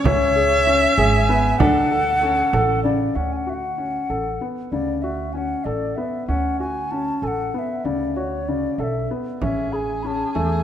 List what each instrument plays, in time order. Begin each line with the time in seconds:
0.04 upright bass C#2, felt piano C#4, flute C#5, viola E5, frame drum
0.36 felt piano G#4
0.67 felt piano C#4
0.97 upright bass G#1, felt piano G#4, flute G#5, frame drum
1.29 felt piano B3
1.59 upright bass D2, felt piano D4, viola A4, flute F#5, frame drum
1.91 felt piano A4
2.22 felt piano C#4
2.53 upright bass A1, felt piano A4, frame drum
2.84 felt piano C#3, flute D5, frame drum
3.15 upright bass D2, felt piano C#4, flute F#5
3.32 flute G#5
3.37 flute F#5
3.47 felt piano F#4, flute E5
3.54 flute F#5
3.78 felt piano C#4
4.10 upright bass A1, felt piano A4
4.41 felt piano B3
4.72 upright bass D2, felt piano C#3, flute D5
5.02 felt piano F#4, flute E5
5.33 felt piano C#4, flute G#5
5.37 flute F#5
5.64 upright bass A1, felt piano A4, flute D5
5.96 felt piano B3, flute E5
6.28 upright bass D2, felt piano C#4, flute F#5
6.60 felt piano F#4, flute G#5
6.91 felt piano C#4, flute A5
7.22 upright bass A1, felt piano A4, flute G#5
7.27 flute F#5
7.54 felt piano B3, flute F#5
7.59 flute E5
7.85 upright bass D2, felt piano C#3, flute D5
8.16 felt piano F#4, flute C#5
8.48 felt piano C#3, flute D5
8.78 upright bass B1, felt piano A4, flute F#5
8.83 flute E5
9.11 felt piano B3
9.41 upright bass A1, felt piano C#4, viola G#4, flute E5, frame drum
9.72 felt piano G#4, flute G#5 B5, frame drum
10.03 felt piano C#4, flute B5
10.07 flute A5
10.33 upright bass E2, felt piano A3, flute G#5, frame drum